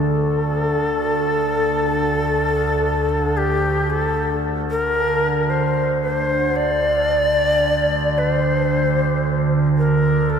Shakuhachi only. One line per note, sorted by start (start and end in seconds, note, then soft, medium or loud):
0.00 3.38 A4 loud
3.37 3.92 G4 medium
3.90 4.43 A4 loud
4.70 5.51 A#4 loud
5.50 6.02 C5 medium
6.02 6.58 C5 medium
6.56 8.19 D5 loud
8.18 9.51 C5 loud
9.78 10.31 A#4 medium
10.30 10.39 A4 medium